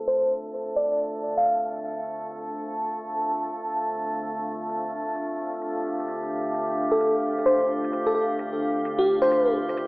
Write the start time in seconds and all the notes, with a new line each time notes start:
Already playing: A3 D4 A4 C5 F5
0.07 C5, shaker
0.45 shaker
0.54 shaker
0.68 shaker
0.76 D5
1.00 shaker
1.37 F5
1.46 shaker
1.84 shaker
1.92 shaker
2.30 shaker
2.38 shaker
2.54 shaker
2.84 shaker
3.31 shaker
3.69 shaker
3.77 shaker
4.15 shaker
4.23 shaker
4.38 shaker
4.69 shaker
5.15 shaker
5.53 shaker
5.61 G4, shaker
6.00 shaker
6.08 shaker
6.23 shaker
6.54 shaker
6.92 A4
7.00 shaker
7.38 shaker
7.46 C5, shaker
7.84 shaker
7.93 shaker
8.07 A4, shaker
8.15 A4
8.39 shaker
8.85 shaker
8.99 G4
9.22 C5, shaker
9.31 shaker
9.69 shaker
9.77 shaker